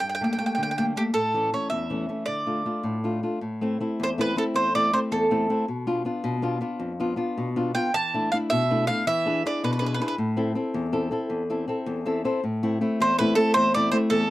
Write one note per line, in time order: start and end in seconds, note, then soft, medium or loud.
0.01 0.39 G2 soft
0.09 0.14 G5 medium
0.15 0.23 G5 medium
0.21 0.37 G3 soft
0.21 0.38 A3 soft
0.21 0.38 A#3 soft
0.21 0.31 G5 soft
0.33 0.37 G5 medium
0.38 0.69 G3 soft
0.38 0.70 A3 soft
0.38 0.70 A#3 soft
0.38 0.45 G5 soft
0.46 0.53 G5 medium
0.55 0.95 D3 medium
0.55 0.62 G5 medium
0.63 0.70 G5 medium
0.71 0.77 G5 medium
0.78 0.95 G3 soft
0.78 0.95 A3 soft
0.78 0.95 A#3 soft
0.78 0.84 G5 medium
0.96 1.11 G3 soft
0.96 1.11 A3 soft
0.96 1.11 A#3 soft
0.96 1.02 G4 medium
1.14 1.51 A2 soft
1.14 1.49 A4 medium
1.34 1.51 E3 soft
1.34 1.52 A3 soft
1.34 1.52 C#4 soft
1.53 1.83 E3 soft
1.53 1.83 A3 soft
1.53 1.83 C#4 soft
1.53 1.69 C#5 medium
1.70 2.08 E2 medium
1.70 2.23 E5 medium
1.90 2.08 E3 soft
1.90 2.08 A3 soft
1.90 2.08 C#4 soft
2.09 2.24 E3 soft
2.09 2.24 A3 soft
2.09 2.24 C#4 soft
2.26 2.65 D3 soft
2.26 3.18 D5 medium
2.47 2.64 A3 soft
2.47 2.65 D4 soft
2.47 2.65 F4 soft
2.65 2.96 A3 soft
2.65 2.97 D4 soft
2.65 2.97 F4 soft
2.83 3.21 A2 medium
3.04 3.22 A3 soft
3.04 3.22 D4 soft
3.04 3.22 F4 soft
3.23 3.38 A3 soft
3.23 3.38 D4 soft
3.23 3.38 F4 soft
3.41 3.79 A2 soft
3.61 3.79 A3 soft
3.61 3.79 C4 soft
3.61 3.80 E4 soft
3.81 4.11 A3 soft
3.81 4.11 C4 soft
3.81 4.12 E4 soft
4.00 4.37 E2 medium
4.00 4.08 C5 medium
4.18 4.35 A3 medium
4.18 4.36 C4 soft
4.18 4.36 E4 medium
4.18 4.37 B4 medium
4.36 4.67 A3 soft
4.36 4.68 C4 soft
4.36 4.68 E4 medium
4.36 4.43 A4 medium
4.54 4.92 E2 soft
4.54 4.75 C5 medium
4.75 4.92 A3 soft
4.75 4.92 C4 soft
4.75 4.93 E4 soft
4.75 4.93 D5 medium
4.93 5.24 A3 soft
4.93 5.24 C4 soft
4.93 5.24 E4 medium
4.93 4.99 C5 medium
5.12 5.49 E2 medium
5.12 5.64 A4 medium
5.31 5.48 A3 medium
5.31 5.49 C4 medium
5.31 5.49 E4 medium
5.50 5.64 A3 soft
5.50 5.65 C4 soft
5.50 5.65 E4 medium
5.68 6.05 B2 medium
5.87 6.04 B3 soft
5.87 6.05 D4 soft
5.87 6.04 F4 medium
6.05 6.35 B3 soft
6.05 6.36 D4 soft
6.05 6.36 F4 soft
6.24 6.60 B2 medium
6.42 6.60 B3 soft
6.42 6.60 D4 soft
6.42 6.60 F4 medium
6.61 6.91 B3 soft
6.61 6.92 D4 soft
6.61 6.92 F4 soft
6.80 7.16 F2 soft
7.00 7.15 B3 soft
7.00 7.16 D4 soft
7.00 7.16 F4 medium
7.16 7.48 B3 soft
7.16 7.48 D4 soft
7.16 7.48 F4 medium
7.38 7.74 B2 medium
7.56 7.73 B3 soft
7.56 7.74 D4 soft
7.56 7.74 F4 soft
7.75 7.90 B3 soft
7.75 7.90 D4 soft
7.75 7.90 F4 medium
7.75 7.92 G5 medium
7.94 8.31 E3 soft
7.94 8.29 A5 medium
8.14 8.32 A3 soft
8.14 8.32 D4 soft
8.14 8.33 E4 soft
8.32 8.63 A3 soft
8.32 8.63 D4 soft
8.32 8.63 E4 soft
8.32 8.37 F5 medium
8.50 8.88 B2 medium
8.50 8.85 E5 medium
8.70 8.87 A3 soft
8.70 8.88 D4 soft
8.70 8.88 E4 soft
8.87 9.03 A3 soft
8.87 9.03 D4 soft
8.87 9.03 E4 medium
8.87 9.05 F5 medium
9.07 9.43 E3 medium
9.07 9.42 E5 medium
9.26 9.44 D4 soft
9.26 9.45 E4 soft
9.26 9.44 G#4 medium
9.46 9.75 D4 soft
9.46 9.75 E4 soft
9.46 9.75 G#4 medium
9.46 9.63 D5 medium
9.64 10.00 B2 medium
9.64 9.71 B4 medium
9.73 9.78 B4 soft
9.79 9.99 D4 soft
9.79 10.00 E4 soft
9.79 10.00 G#4 medium
9.79 9.85 B4 medium
9.86 9.93 B4 medium
9.94 10.00 B4 medium
10.00 10.15 D4 soft
10.00 10.15 E4 soft
10.00 10.16 G#4 soft
10.00 10.07 B4 soft
10.08 10.14 B4 medium
10.18 10.55 A2 medium
10.37 10.54 C4 soft
10.37 10.55 E4 soft
10.37 10.55 A4 soft
10.55 10.85 C4 soft
10.55 10.86 E4 soft
10.55 10.86 A4 soft
10.74 11.11 E2 medium
10.92 11.10 C4 medium
10.92 11.11 E4 soft
10.92 11.11 A4 medium
11.11 11.41 C4 soft
11.11 11.42 E4 soft
11.11 11.42 A4 medium
11.30 11.67 E2 soft
11.50 11.66 C4 soft
11.50 11.67 E4 soft
11.50 11.68 A4 medium
11.68 11.98 C4 soft
11.68 11.98 E4 soft
11.68 11.99 A4 soft
11.86 12.23 E2 medium
12.06 12.23 C4 soft
12.06 12.24 E4 soft
12.06 12.24 A4 soft
12.06 12.23 E5 medium
12.25 12.40 C4 soft
12.25 12.40 E4 soft
12.25 12.40 A4 soft
12.25 12.42 C5 medium
12.44 12.80 A2 soft
12.63 12.80 A3 medium
12.63 12.80 C4 soft
12.63 12.80 E4 medium
12.81 13.12 A3 soft
12.81 13.11 C4 soft
12.81 13.12 E4 medium
13.00 13.37 E2 medium
13.00 13.18 C5 medium
13.19 13.36 A3 medium
13.19 13.36 C4 soft
13.19 13.37 E4 medium
13.19 13.35 B4 medium
13.35 13.67 A3 soft
13.35 13.67 C4 soft
13.35 13.68 E4 medium
13.35 13.53 A4 medium
13.54 13.92 E2 medium
13.54 13.73 C5 loud
13.74 13.92 A3 soft
13.74 13.91 C4 soft
13.74 13.92 E4 medium
13.74 13.91 D5 medium
13.92 14.23 A3 medium
13.92 14.23 C4 soft
13.92 14.23 E4 medium
13.92 13.97 C5 medium
14.10 14.30 E2 medium
14.10 14.30 A4 medium